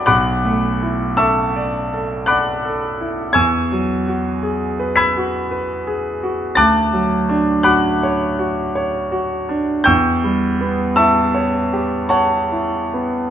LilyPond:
\new Staff \with { instrumentName = "Grand piano" } { \time 3/4 \key e \dorian \tempo 4 = 54 << { <fis'' b'' d''' fis'''>4 <e'' a'' cis''' e'''>4 <fis'' b'' d''' fis'''>4 | <gis'' cis''' e''' gis'''>4. <b'' e''' gis''' b'''>4. | <a'' d''' fis''' a'''>4 <fis'' b'' d''' fis'''>4 r4 | <g'' cis''' e''' g'''>4 <e'' a'' cis''' e'''>4 <cis'' fis'' a'' cis'''>4 | } \\ { \tuplet 3/2 { b,,8 a8 e'8 a'8 d''8 a'8 d''8 a'8 e'8 } | \tuplet 3/2 { e,8 fis8 fis'8 gis'8 b'8 fis'8 b'8 gis'8 fis'8 } | \tuplet 3/2 { d,8 fis8 d'8 fis'8 cis''8 fis'8 cis''8 fis'8 d'8 } | \tuplet 3/2 { e,8 g8 b8 e'8 cis''8 g'8~ g'8 e'8 b8 } | } >> }